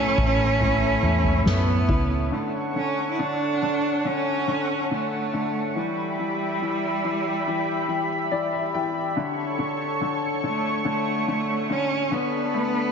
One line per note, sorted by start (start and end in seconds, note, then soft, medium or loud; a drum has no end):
0.00 0.59 A2 medium
0.00 0.19 A3 medium
0.00 0.38 B3 medium
0.00 0.18 C#4 medium
0.00 1.46 C#4 loud
0.00 0.60 E4 medium
0.00 2.28 A4 medium
0.00 2.28 C#5 medium
0.00 2.28 E5 medium
0.00 2.28 B5 medium
0.18 0.99 A1 loud
0.18 0.61 A3 medium
0.18 0.81 C#4 medium
0.18 kick loud
0.39 1.66 B3 medium
0.60 2.41 A2 medium
0.60 1.02 A3 medium
0.60 1.01 E4 medium
0.60 floor tom medium
0.82 1.24 C#4 medium
1.02 1.43 E2 medium
1.02 1.45 A3 medium
1.02 1.44 E4 medium
1.24 1.88 C#4 medium
1.24 floor tom medium
1.45 1.86 F#2 medium
1.45 2.30 A3 medium
1.45 2.28 B3 medium
1.45 2.40 E4 medium
1.45 snare loud
1.67 2.09 B3 medium
1.88 2.29 C#2 medium
1.88 2.91 C#4 medium
1.88 2.31 E4 medium
1.88 kick medium
2.10 2.41 B3 medium
2.32 2.74 D3 medium
2.32 2.52 A3 medium
2.32 5.73 A4 medium
2.32 5.73 C#5 medium
2.32 5.73 F#5 medium
2.32 5.73 C#6 medium
2.75 3.18 D3 soft
2.75 3.09 C#4 medium
3.11 3.21 E4 medium
3.19 3.61 D3 soft
3.19 4.08 D4 medium
3.62 4.04 D3 soft
4.05 4.46 D3 soft
4.05 4.91 C#4 medium
4.48 4.90 D3 soft
4.91 5.32 D3 soft
4.91 5.80 A3 medium
5.33 5.75 D3 soft
5.75 6.17 E3 medium
5.75 8.74 G3 medium
5.75 9.13 G4 medium
5.75 9.12 E5 medium
5.75 9.12 B5 medium
6.19 6.60 E3 soft
6.62 7.02 E3 soft
7.04 7.46 E3 soft
7.47 7.86 E3 soft
7.88 8.30 E3 soft
8.31 8.73 E3 soft
8.31 8.51 D5 medium
8.53 8.72 E5 medium
8.74 9.15 E3 soft
8.74 9.13 G5 medium
9.16 9.57 D3 medium
9.16 12.09 A4 medium
9.16 12.09 C#5 medium
9.16 12.09 C#6 medium
9.59 10.00 D3 soft
10.01 10.42 D3 soft
10.43 10.83 D3 soft
10.43 10.84 A3 medium
10.85 11.26 D3 medium
10.85 11.74 A3 medium
11.28 11.68 D3 soft
11.70 12.10 D3 soft
11.70 12.16 C#4 medium
12.11 12.92 D3 medium
12.11 12.92 B3 medium
12.11 12.92 D4 medium
12.11 12.92 A4 medium
12.11 12.92 B4 medium
12.11 12.92 B5 medium
12.54 12.92 A3 soft